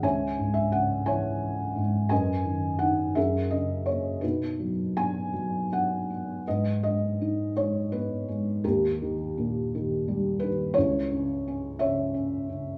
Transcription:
<<
  \new Staff \with { instrumentName = "Felt piano" } { \time 6/8 \key b \major \tempo 4. = 56 << { gis''8. e''16 fis''8 gis''4 r8 | gis''4 fis''8 e''8 dis''8 cis''8 | b'4 gis''4 fis''4 | \key gis \minor dis''8 dis''4 cis''8 b'4 |
ais'2~ ais'8 b'8 | cis''4. e''4. | } \\ { <cis'' e''>4. <cis'' e''>4. | <b' dis''>4. <gis' ais'>4. | <dis' fis'>2 r4 | b'4. r4. |
g'2~ g'8 r8 | e'4. cis''4. | } >> }
  \new Staff \with { instrumentName = "Felt piano" } { \clef bass \time 6/8 \key b \major cis,8 gis,8 cis8 e4 gis,8 | fis,8 dis8 dis'8 fis,8 cis8 ais8 | b,8 fis8 b8 fis4 b8 | \key gis \minor gis,8 gis8 dis'8 gis8 b8 gis8 |
dis,8 dis8 ais,8 dis8 g8 dis8 | cis,8 cis8 cis'8 cis8 cis'8 cis8 | }
>>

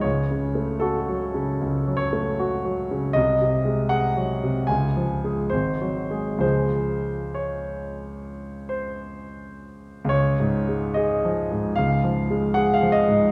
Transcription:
<<
  \new Staff \with { instrumentName = "Grand piano" } { \time 4/4 \key des \major \tempo 4 = 75 des''4 a'4. des''4. | ees''4 ges''4 aes''4 c''4 | c''4 des''4. c''4. | des''4 ees''4 f''4 ges''16 f''16 ees''8 | }
  \new Staff \with { instrumentName = "Grand piano" } { \clef bass \time 4/4 \key des \major \tuplet 3/2 { des,8 des8 a8 ges'8 ges8 des8 des,8 ges8 a8 ges'8 ges8 des8 } | \tuplet 3/2 { c,8 c8 aes8 aes'8 ges8 c8 des,8 f8 <aes aes'>8 aes,,8 ges8 <aes aes'>8 } | <des, f aes aes'>1 | \tuplet 3/2 { des,8 aes,8 aes8 aes'8 f8 aes,8 des,8 f8 aes8 aes'8 f8 aes,8 } | }
>>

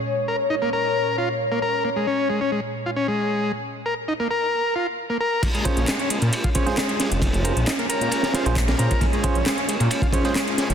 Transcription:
<<
  \new Staff \with { instrumentName = "Tine electric piano" } { \time 4/4 \key bes \minor \tempo 4 = 134 r1 | r1 | r1 | r8 <des' f' aes' c''>16 r4. r16 <des' f' aes' c''>16 <des' f' aes' c''>16 r4 |
r8 <des' f' aes' c''>16 r4. r16 <des' f' aes' c''>16 <des' f' aes' c''>16 r8 <des' f' aes' c''>16 r16 | r8 <des' f' aes' c''>16 r4. r16 <des' f' aes' c''>16 <des' f' aes' c''>16 r4 | }
  \new Staff \with { instrumentName = "Transistor combo organ" } { \time 4/4 \key bes \minor r8 bes'16 r16 ees'16 bes16 bes'4 f'16 r8 bes16 bes'8 | bes16 aes16 des'8 aes16 des'16 aes16 r8 f'16 des'16 aes4 r16 | r8 bes'16 r16 ees'16 bes16 bes'4 f'16 r8 bes16 bes'8 | bes16 aes16 des'8 aes16 des'16 aes16 r8 f'16 des'16 aes4 r16 |
r8 bes'16 r16 ees'16 bes16 bes'4 f'16 r8 bes16 bes'8 | bes16 aes16 des'8 aes16 des'16 aes16 r8 f'16 des'16 aes4 r16 | }
  \new Staff \with { instrumentName = "Analog synth pad" } { \time 4/4 \key bes \minor <bes, aes des' des''>1~ | <bes, aes des' des''>1 | r1 | <aes bes des'>1~ |
<aes bes des'>1~ | <aes bes des'>1 | }
  \new Staff \with { instrumentName = "Detuned saw bass" } { \clef bass \time 4/4 \key bes \minor r1 | r1 | r1 | r8. bes,,16 r8. bes,16 r4. r16 f,,16~ |
f,,8. bes,,16 r8. bes,16 r8. bes,,8. bes,16 r16 | r8. bes,,16 r8. bes,16 r4. r16 f,,16 | }
  \new DrumStaff \with { instrumentName = "Drums" } \drummode { \time 4/4 r4 r4 r4 r4 | r4 r4 r4 r4 | r4 r4 r4 r4 | <cymc hh bd cymr>16 <hh cymr>16 <hh bd cymr>16 hh16 <hc hh cymr sn>16 hh16 <hh cymr>16 <hh cymr>16 <hh cymr>16 <hh bd>16 <hh bd cymr>16 <hh sn>16 <hc hh cymr sn>16 <hh cymr>16 <hh cymr sn>16 hh16 |
<hh bd cymr>16 <hh cymr>16 <hh cymr>16 hh16 <hc hh cymr sn>16 hh16 <hh cymr>16 hh16 <hh cymr>16 <hh sn>16 <hh cymr sn>16 <hh cymr>16 <hc hh bd cymr>16 <hh cymr sn>16 <hh cymr>16 <hh bd cymr>16 | <hh bd cymr>16 <hh cymr>16 <hh bd cymr>16 hh16 <hc hh cymr sn>16 hh16 <hh cymr>16 <hh cymr>16 <hh cymr>16 <hh bd>16 <hh bd cymr>16 <hh sn>16 <hc hh cymr sn>16 <hh cymr>16 <hh cymr sn>16 hh16 | }
>>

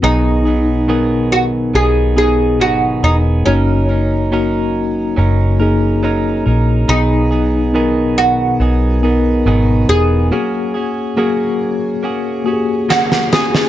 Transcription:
<<
  \new Staff \with { instrumentName = "Oud" } { \time 4/4 \key b \major \tempo 4 = 70 dis'4 r8 fis'8 gis'8 gis'8 fis'8 dis'8 | cis'2.~ cis'8 r8 | dis'4 r8 fis'2 gis'8~ | gis'2. fis'8 gis'8 | }
  \new Staff \with { instrumentName = "Tine electric piano" } { \time 4/4 \key b \major <b dis' gis'>4 <b dis' ais'>4. <b dis' gis'>4. | <ais dis' fis'>4 <ais dis' fis'>4. <ais dis' gis'>4. | <b dis' gis'>4 <b dis' ais'>4. <b dis' ais'>4. | <ais fis' gis'>4 <ais fis' gis'>4. <ais fis' g' gis'>4. | }
  \new Staff \with { instrumentName = "Tine electric piano" } { \clef bass \time 4/4 \key b \major b,4. r2 r8 | r1 | b,4. r2 r8 | r1 | }
  \new Staff \with { instrumentName = "Clean electric guitar" } { \time 4/4 \key b \major <b, dis fis b dis' gis'>8 <fis b dis' gis'>8 <b, dis fis b dis' gis'>4 <fis b dis' gis'>8 <fis b dis' gis'>8 <b, dis fis b dis' gis'>8 <fis b dis' gis'>8 | <fis cis' dis' ais'>8 <cis' dis' ais'>8 <fis cis' dis' ais'>4 <fis cis' dis' ais'>8 <cis' dis' ais'>8 <fis cis' dis' ais'>8 <cis' dis' ais'>8 | <b, dis fis b dis' gis'>8 <fis b dis' gis'>8 <b, dis fis b dis' gis'>4 <fis b dis' gis'>8 <fis b dis' gis'>8 <b, dis fis b dis' gis'>8 <fis b dis' gis'>8 | <fis ais cis' fis' gis'>8 <cis' fis' gis'>8 <fis ais cis' fis' gis'>4 <ais cis' fis' gis'>8 <cis' fis' gis'>8 <fis ais cis' fis' gis'>8 <cis' fis' gis'>8 | }
  \new Staff \with { instrumentName = "Fingered electric bass" } { \clef bass \time 4/4 \key b \major b,,2 b,,4 gis,,8 e,,8 | fis,,2 fis,,4. ais,,8 | b,,2 b,,4 gis,,8 e,,8 | r1 | }
  \new DrumStaff \with { instrumentName = "Drums" } \drummode { \time 4/4 r4 r4 r4 r4 | r4 r4 r4 r4 | r4 r4 r4 r4 | r4 r4 r4 sn16 sn16 sn16 sn16 | }
>>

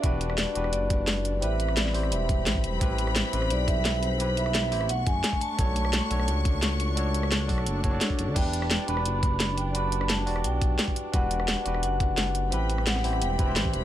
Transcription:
<<
  \new Staff \with { instrumentName = "Vibraphone" } { \time 4/4 \key e \minor \tempo 4 = 173 d''2 d''2 | e''4 d''4 e''4. r8 | r4. c''8 d''8 e''4 c''8~ | c''8 e''4. fis''8 gis''4 a''8~ |
a''2~ a''8 r4. | r1 | g''4. b''2 g''8 | b''4 a''4 g''2 |
fis''2 fis''2 | g''4 fis''4 g''4. r8 | }
  \new Staff \with { instrumentName = "Tine electric piano" } { \time 4/4 \key e \minor <d' fis' g' b'>4. <d' fis' g' b'>2~ <d' fis' g' b'>8 | <c' e' g' b'>4. <c' e' g' c''>16 r2 r16 | <c' e' g' b'>4. <c' e' g' b'>2~ <c' e' g' b'>8 | <c' e' g' b'>4. <c' e' g' c''>16 r2 r16 |
<d' fis' a' cis''>4. <d' fis' a' cis''>2~ <d' fis' a' cis''>8 | <d' fis' a' cis''>4. <d' fis' a' d''>16 r8. <d' fis' a' cis''>16 <d' fis' a' d''>4~ <d' fis' a' d''>16 | <d' e' g' b'>4. <d' fis' g' b'>2~ <d' fis' g' b'>8 | <d' fis' g' b'>4. <d' fis' g' d''>16 r2 r16 |
<d' fis' g' b'>4. <d' fis' g' b'>2~ <d' fis' g' b'>8 | <c' e' g' b'>4. <c' e' g' c''>16 r8. <c' e' g' b'>16 <c' e' g' c''>4~ <c' e' g' c''>16 | }
  \new Staff \with { instrumentName = "String section" } { \time 4/4 \key e \minor << { r1 | <g b''>1~ | <g b''>1~ | <g b''>2 <a cis'''>2~ |
<a cis'''>1~ | <a cis'''>1 | r1 | r1 |
r1 | <g b''>1 | } \\ { d'1 | c'1~ | c'1~ | c'2 d'2~ |
d'1~ | d'1~ | d'1~ | d'1~ |
d'1 | c'1 | } >> }
  \new Staff \with { instrumentName = "Analog synth bass" } { \clef bass \time 4/4 \key e \minor e,,4~ e,,16 r16 e,,8 fis,,2 | a,,4. a,,8 e,,8 e,,8 a,,8 e,,8 | a,,4~ a,,16 r16 a,,8 b,,2~ | b,,4. a,,8 b,,8 fis,,8 r4 |
b,,4~ b,,16 r16 b,,8 cis,2~ | cis,4. b,,8 fis,,8 fis,,8 r8 fis,,16 d,16 | e,,4~ e,,16 r16 e,,8 fis,,2~ | fis,,4. e,,8 b,,8 b,,8 r4 |
e,,4~ e,,16 r16 e,,8 fis,,2 | a,,4. a,,8 e,,8 e,,8 a,,8 e,,8 | }
  \new DrumStaff \with { instrumentName = "Drums" } \drummode { \time 4/4 <hh bd>8 hh16 ss16 <hh sn>8 hh16 ss16 hh8 <hh bd>8 <hh sn>8 hh8 | hh8 hh16 ss16 <hh sn>16 sn16 hho16 ss16 hh8 <hh bd>8 <hh sn>16 bd16 hh8 | <hh bd>8 hh16 ss16 <hh sn>8 hh16 ss16 hh8 <hh bd>8 <hh sn>8 hh8 | hh8 hh16 ss16 <hh sn>8 hho16 ss16 hh8 <hh bd>8 <hh sn>16 bd16 hh8 |
<hh bd>8 hh16 ss16 <hh sn>8 hh16 ss16 hh8 <hh bd>8 <hh sn>8 hh8 | hh8 hh16 ss16 <hh sn>8 <hho bd>16 ss16 hh8 <hh bd>8 <hh sn>16 bd16 hh8 | <cymc hh bd>8 hh16 ss16 <hh sn>8 hh16 ss16 hh8 <hh bd>8 <hh sn>8 hh8 | hh8 hh16 ss16 <hh sn>8 hho16 ss16 hh8 <hh bd>8 <hh sn>16 bd16 hh8 |
<hh bd>8 hh16 ss16 <hh sn>8 hh16 ss16 hh8 <hh bd>8 <hh sn>8 hh8 | hh8 hh16 ss16 <hh sn>16 sn16 hho16 ss16 hh8 <hh bd>8 <hh sn>16 bd16 hh8 | }
>>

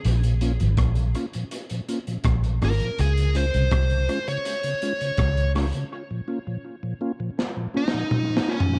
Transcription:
<<
  \new Staff \with { instrumentName = "Lead electric guitar" } { \time 4/4 \key bes \minor \tempo 4 = 82 r2. r8 bes'8 | aes'8 c''4~ c''16 des''4.~ des''16 r8 | r2 r8 ees'4 des'8 | }
  \new Staff \with { instrumentName = "Tonewheel organ" } { \time 4/4 \key bes \minor r8 <bes des' f'>8 r8 <bes des' f'>8 r8 <bes des' f'>8 r8 <bes des' f'>8 | r8 <aes des' f'>8 r8 <aes des' f'>8 r8 <aes des' f'>8 r8 <aes des' f'>8 | r8 <bes des' f'>8 r8 <bes des' f'>8 r8 <bes des' f'>8 r8 <bes des' f'>8 | }
  \new Staff \with { instrumentName = "Tonewheel organ" } { \clef bass \time 4/4 \key bes \minor r16 <bes, f>16 r16 <bes, f>16 r16 <bes, f>16 r16 <bes, f>16 r16 <bes, f>16 r16 <bes, f>16 r16 <bes, f>16 r16 <bes, f>16 | r16 des16 r16 des16 r16 des16 r16 des16 r16 des16 r16 des16 r16 des16 r16 des16 | r16 <bes, f>16 r16 <bes, f>16 r16 <bes, f>16 r16 <bes, f>16 r16 <bes, f>16 r16 <bes, f>16 r16 <bes, f>16 r16 <bes, f>16 | }
  \new Staff \with { instrumentName = "Fingered electric bass" } { \clef bass \time 4/4 \key bes \minor bes,,8. aes,,16 bes,,8 r4. bes,,8 aes,,16 r16 | des,8. c,16 c,8 r4. des,8. r16 | r1 | }
  \new DrumStaff \with { instrumentName = "Drums" } \drummode { \time 4/4 hh16 hh16 hh16 hh16 <hh bd ss>16 hh16 hh16 hh16 hh16 hh16 hh16 hh16 <hh bd ss>16 hh16 <hho ss>16 hh16 | hh16 hh16 hh16 hh16 <hh bd ss>16 hh16 hh16 hh16 hh16 hh16 hh16 hh16 <hh bd ss>16 hh16 <hho ss>16 hh16 | r4 r4 \tuplet 3/2 { sn8 r8 sn8 toml8 sn8 tomfh8 } | }
>>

